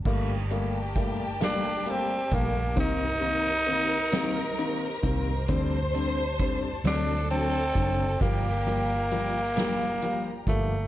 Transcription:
0.05 2.28 G1 medium
0.05 0.31 G3 medium
0.05 0.31 A3 medium
0.05 0.32 A#3 medium
0.05 2.73 G4 medium
0.05 6.81 G4 medium
0.05 2.75 A#4 medium
0.05 2.75 D5 medium
0.05 2.75 A5 medium
0.05 kick medium
0.05 crash medium
0.50 0.76 G3 medium
0.50 0.77 A3 medium
0.50 0.77 A#3 medium
0.50 closed hi-hat soft
0.96 1.22 G3 medium
0.96 1.22 A3 medium
0.96 1.22 A#3 medium
0.96 kick medium
0.96 closed hi-hat medium
1.40 1.67 G3 medium
1.40 1.67 A3 medium
1.40 1.67 A#3 medium
1.40 1.91 D4 medium
1.40 snare loud
1.40 closed hi-hat medium
1.86 2.12 G3 medium
1.86 2.12 A3 medium
1.86 2.12 A#3 medium
1.86 2.36 C4 medium
1.86 closed hi-hat medium
2.31 2.77 A#1 medium
2.31 2.57 G3 medium
2.31 2.58 A3 medium
2.31 2.58 A#3 medium
2.31 2.78 A#3 medium
2.31 kick medium
2.31 closed hi-hat medium
2.76 5.00 C2 medium
2.76 3.03 D#3 medium
2.76 3.03 A#3 medium
2.76 3.03 C4 loud
2.76 5.49 A#4 loud
2.76 8.17 C5 medium
2.76 5.47 D#5 medium
2.76 5.47 A#5 medium
2.76 kick loud
2.76 closed hi-hat medium
2.80 5.01 D#4 loud
3.21 3.48 D#3 medium
3.21 3.48 A#3 medium
3.21 3.48 C4 medium
3.21 closed hi-hat soft
3.67 3.93 D#3 medium
3.67 3.93 A#3 medium
3.67 3.93 C4 medium
3.67 closed hi-hat soft
4.12 4.38 D#3 medium
4.12 4.39 A#3 medium
4.12 4.39 C4 loud
4.12 snare loud
4.12 closed hi-hat medium
4.58 4.84 D#3 medium
4.58 4.84 A#3 medium
4.58 4.84 C4 medium
4.58 closed hi-hat medium
5.03 5.46 C2 medium
5.03 5.29 D#3 medium
5.03 5.29 A#3 medium
5.03 5.29 C4 medium
5.03 kick medium
5.03 closed hi-hat medium
5.48 6.81 D2 loud
5.48 5.74 D3 medium
5.48 5.75 G3 medium
5.48 5.75 C4 loud
5.48 6.81 C5 loud
5.48 10.87 D5 medium
5.48 8.19 A5 medium
5.48 kick loud
5.48 closed hi-hat medium
5.93 6.20 D3 medium
5.93 6.20 G3 medium
5.93 6.20 C4 medium
5.93 closed hi-hat soft
6.39 6.65 D3 medium
6.39 6.66 G3 medium
6.39 6.66 C4 medium
6.39 kick medium
6.39 closed hi-hat medium
6.84 7.71 D2 medium
6.84 7.11 D3 medium
6.84 7.11 F#3 medium
6.84 7.11 C4 loud
6.84 7.28 D4 loud
6.84 8.20 F#4 medium
6.84 8.17 A4 loud
6.84 snare loud
6.84 closed hi-hat loud
7.30 7.56 D3 medium
7.30 7.57 F#3 medium
7.30 8.17 C4 loud
7.30 7.56 C4 medium
7.30 closed hi-hat medium
7.75 8.18 F#1 medium
7.75 8.01 D3 medium
7.75 8.01 F#3 medium
7.75 8.02 C4 medium
7.75 kick medium
7.75 closed hi-hat medium
8.21 10.43 G1 loud
8.21 8.46 F3 medium
8.21 8.47 G3 medium
8.21 8.47 A#3 loud
8.21 10.43 A#3 medium
8.21 10.87 F4 medium
8.21 9.11 G4 medium
8.21 10.87 G5 medium
8.21 10.87 A#5 medium
8.21 kick loud
8.21 closed hi-hat medium
8.66 8.92 F3 medium
8.66 8.92 G3 medium
8.66 8.92 A#3 medium
8.66 closed hi-hat soft
9.11 9.37 F3 medium
9.11 9.37 G3 medium
9.11 9.37 A#3 medium
9.11 10.43 G4 medium
9.11 closed hi-hat medium
9.56 9.82 F3 medium
9.56 9.83 G3 medium
9.56 9.83 A#3 medium
9.56 snare loud
9.56 closed hi-hat loud
10.02 10.28 F3 medium
10.02 10.28 G3 medium
10.02 10.28 A#3 medium
10.02 closed hi-hat medium
10.47 10.87 G1 medium
10.47 10.73 F3 medium
10.47 10.73 G3 medium
10.47 10.87 A3 medium
10.47 10.73 A#3 medium
10.47 kick medium
10.47 closed hi-hat medium

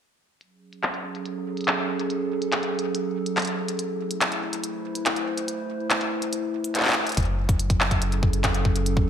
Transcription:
0.41 3.79 F#3 medium
0.41 closed hi-hat medium
0.46 3.79 C#4 medium
0.46 4.34 G#4 medium
0.73 closed hi-hat medium
0.83 5.14 A4 medium
0.83 clap loud
0.83 closed hi-hat medium
0.94 closed hi-hat soft
1.15 closed hi-hat medium
1.26 closed hi-hat medium
1.57 closed hi-hat soft
1.61 closed hi-hat soft
1.64 clap loud
1.64 closed hi-hat soft
1.68 closed hi-hat medium
1.99 closed hi-hat medium
2.10 closed hi-hat medium
2.42 closed hi-hat medium
2.52 clap loud
2.52 closed hi-hat medium
2.63 closed hi-hat soft
2.79 closed hi-hat medium
2.95 closed hi-hat medium
3.26 closed hi-hat medium
3.37 clap loud
3.37 closed hi-hat soft
3.39 closed hi-hat soft
3.42 closed hi-hat soft
3.45 closed hi-hat medium
3.47 closed hi-hat soft
3.68 closed hi-hat medium
3.79 7.17 A3 medium
3.79 closed hi-hat medium
3.83 8.52 E4 medium
4.11 7.17 C5 medium
4.11 closed hi-hat medium
4.16 8.13 B4 medium
4.21 clap loud
4.21 closed hi-hat medium
4.32 closed hi-hat soft
4.53 closed hi-hat medium
4.64 closed hi-hat medium
4.95 closed hi-hat medium
5.06 clap loud
5.06 closed hi-hat medium
5.16 closed hi-hat soft
5.38 closed hi-hat medium
5.48 closed hi-hat medium
5.90 clap loud
5.90 closed hi-hat soft
6.01 closed hi-hat soft
6.22 closed hi-hat soft
6.33 closed hi-hat medium
6.64 closed hi-hat soft
6.75 clap medium
6.75 closed hi-hat medium
6.78 clap medium
6.80 clap medium
6.83 clap medium
6.85 clap medium
6.85 closed hi-hat soft
6.88 clap medium
6.88 closed hi-hat soft
6.91 clap loud
6.91 closed hi-hat soft
6.93 clap loud
6.93 closed hi-hat soft
7.07 closed hi-hat soft
7.09 closed hi-hat soft
7.12 closed hi-hat soft
7.15 9.10 F#1 medium
7.15 9.10 F#3 medium
7.15 kick loud
7.15 closed hi-hat soft
7.17 closed hi-hat medium
7.20 closed hi-hat soft
7.40 9.10 C#4 medium
7.40 9.10 G#4 medium
7.49 kick loud
7.49 closed hi-hat medium
7.59 closed hi-hat medium
7.65 9.10 A4 medium
7.70 kick loud
7.70 closed hi-hat soft
7.81 clap loud
7.91 kick loud
7.91 closed hi-hat medium
8.02 closed hi-hat medium
8.12 closed hi-hat soft
8.23 kick loud
8.33 closed hi-hat medium
8.44 kick loud
8.44 clap loud
8.44 closed hi-hat medium
8.54 closed hi-hat soft
8.65 kick loud
8.76 closed hi-hat medium
8.86 closed hi-hat medium
8.97 kick loud

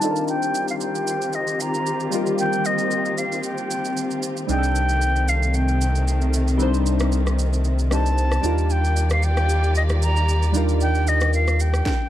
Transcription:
0.00 4.45 D#3 medium
0.00 2.07 G3 medium
0.00 8.40 C4 medium
0.00 2.08 D4 medium
0.00 2.08 D#4 medium
0.00 4.45 F4 medium
0.00 2.09 F4 medium
0.00 4.45 G4 medium
0.00 0.25 A5 loud
0.00 downlifter medium
0.00 shaker loud
0.05 0.10 A4 medium
0.11 2.13 A#4 medium
0.16 shaker soft
0.28 0.67 G5 loud
0.28 shaker medium
0.42 shaker medium
0.55 shaker medium
0.68 0.75 F5 medium
0.68 shaker medium
0.81 1.36 G5 loud
0.81 shaker medium
0.95 shaker medium
1.07 shaker medium
1.22 shaker medium
1.33 1.63 D#5 medium
1.33 shaker medium
1.47 shaker medium
1.60 2.13 A#5 loud
1.60 shaker medium
1.74 shaker medium
1.86 shaker medium
2.00 shaker soft
2.10 4.18 G3 medium
2.10 4.18 A#3 medium
2.10 4.19 D#4 medium
2.10 4.20 F4 medium
2.10 shaker loud
2.15 4.20 A#4 medium
2.26 shaker soft
2.38 2.67 G5 loud
2.38 shaker medium
2.53 shaker medium
2.65 3.20 D#5 loud
2.65 shaker medium
2.78 shaker medium
2.91 shaker medium
3.06 shaker medium
3.18 3.44 F5 medium
3.18 shaker medium
3.32 shaker medium
3.43 4.19 G5 medium
3.43 shaker medium
3.58 shaker medium
3.71 shaker medium
3.85 shaker medium
3.97 shaker medium
4.11 shaker soft
4.23 shaker loud
4.37 shaker medium
4.47 8.40 C2 medium
4.47 8.40 C3 medium
4.47 8.40 D#3 medium
4.47 6.54 G3 medium
4.47 8.40 A3 medium
4.47 6.55 C4 medium
4.47 6.56 D4 medium
4.47 6.56 D#4 medium
4.47 5.30 G5 loud
4.47 shaker medium
4.52 4.57 G#4 medium
4.58 6.60 A4 medium
4.63 shaker medium
4.75 shaker medium
4.89 shaker medium
5.02 shaker medium
5.16 shaker medium
5.28 5.57 F5 loud
5.28 shaker medium
5.43 shaker medium
5.54 6.34 G5 medium
5.54 shaker medium
5.68 shaker medium
5.81 shaker medium
5.95 shaker medium
6.08 shaker medium
6.22 shaker medium
6.33 shaker loud
6.48 shaker medium
6.57 7.87 G3 medium
6.57 7.88 C4 medium
6.57 7.89 D4 medium
6.57 7.89 D#4 medium
6.57 shaker medium
6.62 7.90 C5 medium
6.74 shaker medium
6.86 shaker medium
7.00 cross-stick loud
7.00 shaker medium
7.12 shaker medium
7.27 cross-stick medium
7.27 shaker medium
7.39 shaker medium
7.53 shaker medium
7.64 shaker medium
7.79 shaker soft
7.90 8.40 G3 soft
7.90 8.44 C4 soft
7.90 8.42 D4 soft
7.90 8.43 D#4 soft
7.90 8.45 C5 medium
7.90 8.73 A5 loud
7.90 cross-stick medium
7.90 shaker medium
8.06 shaker medium
8.18 shaker medium
8.32 cross-stick medium
8.32 shaker soft
8.42 11.82 D#2 medium
8.42 11.82 D#3 medium
8.42 10.49 G3 medium
8.42 10.50 D4 medium
8.42 10.50 D#4 medium
8.42 11.82 F4 medium
8.42 10.51 F4 medium
8.42 11.82 G4 medium
8.42 11.82 D5 medium
8.42 shaker loud
8.47 10.52 A#4 medium
8.58 shaker soft
8.70 9.12 G5 loud
8.70 shaker medium
8.84 shaker medium
8.97 shaker medium
9.10 9.26 F5 medium
9.10 cross-stick loud
9.10 shaker medium
9.23 9.76 G5 loud
9.23 shaker medium
9.37 cross-stick medium
9.37 shaker medium
9.49 shaker medium
9.64 shaker medium
9.75 9.83 D#5 medium
9.75 shaker medium
9.89 cross-stick medium
9.89 shaker medium
10.02 10.51 A#5 loud
10.02 shaker medium
10.16 shaker medium
10.29 shaker medium
10.42 shaker soft
10.52 11.82 G3 medium
10.52 11.83 D4 medium
10.52 11.83 D#4 medium
10.52 11.84 F4 medium
10.52 shaker loud
10.57 11.85 A#4 medium
10.69 shaker medium
10.81 11.10 G5 loud
10.81 shaker medium
10.95 shaker medium
11.07 11.34 D#5 medium
11.07 shaker medium
11.21 cross-stick loud
11.21 shaker medium
11.33 11.63 F5 medium
11.33 shaker medium
11.48 cross-stick medium
11.48 shaker medium
11.60 12.09 G5 medium
11.60 shaker medium
11.74 cross-stick medium
11.74 shaker medium
11.86 kick loud
11.86 snare medium

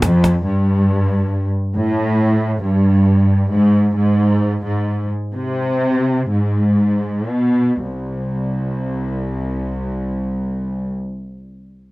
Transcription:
0.02 0.42 F2 medium
0.02 cajon slap medium
0.24 cajon slap medium
0.45 1.48 G2 medium
1.75 2.58 A2 medium
2.62 3.47 G2 medium
3.51 3.93 G#2 medium
3.96 4.61 G#2 medium
4.65 5.08 G#2 medium
5.35 6.28 C3 medium
6.32 7.32 G#2 medium
7.31 7.80 B2 medium
7.83 10.93 C2 medium

